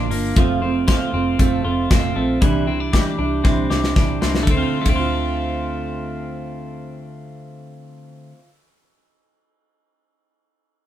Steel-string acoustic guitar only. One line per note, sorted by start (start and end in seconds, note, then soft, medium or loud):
0.00 0.10 F3 medium
0.00 0.11 A#3 medium
0.00 0.11 D4 medium
0.10 0.37 A#3 soft
0.10 0.37 D4 soft
0.10 0.36 F4 medium
0.36 0.62 F3 medium
0.36 0.63 A3 medium
0.36 0.62 C4 medium
0.36 0.60 F4 medium
0.62 0.87 A3 soft
0.62 0.88 C4 soft
0.62 0.88 F4 medium
0.87 1.13 F3 medium
0.87 1.14 A3 medium
0.87 1.12 C4 medium
0.87 1.11 F4 medium
1.12 1.38 A3 soft
1.12 1.39 C4 medium
1.12 1.39 F4 medium
1.38 1.64 F3 medium
1.38 1.65 A3 medium
1.38 1.64 C4 medium
1.38 1.62 F4 medium
1.63 1.89 A3 soft
1.63 1.90 C4 soft
1.63 1.90 F4 medium
1.89 2.16 F3 medium
1.89 2.16 A3 medium
1.89 2.15 C4 medium
1.89 2.14 F4 medium
2.15 2.41 A3 soft
2.15 2.42 C4 soft
2.15 2.41 F4 medium
2.40 2.67 C3 medium
2.40 2.67 E3 medium
2.40 2.67 G3 medium
2.40 2.67 D4 medium
2.40 2.65 E4 medium
2.66 2.92 G3 soft
2.66 2.93 D4 soft
2.66 2.93 E4 medium
2.92 3.18 E3 medium
2.92 3.19 G3 medium
2.92 3.18 D4 medium
2.92 3.17 E4 medium
3.18 3.44 G3 soft
3.18 3.45 D4 soft
3.18 3.44 E4 medium
3.44 3.70 C3 medium
3.44 3.71 E3 medium
3.44 3.71 G3 medium
3.44 3.71 D4 medium
3.44 3.68 E4 medium
3.70 3.95 G3 soft
3.70 3.96 D4 soft
3.70 3.96 E4 medium
3.95 4.21 E3 medium
3.95 4.22 G3 medium
3.95 4.22 D4 medium
3.95 4.20 E4 medium
4.21 4.49 G3 soft
4.21 4.48 D4 soft
4.21 4.47 E4 soft
4.42 4.80 D3 medium
4.50 4.88 A3 medium
4.55 4.84 C4 medium
4.61 4.99 F4 medium
4.81 8.31 D3 medium
4.88 8.38 A3 medium
4.94 8.44 C4 medium
5.00 8.50 F4 medium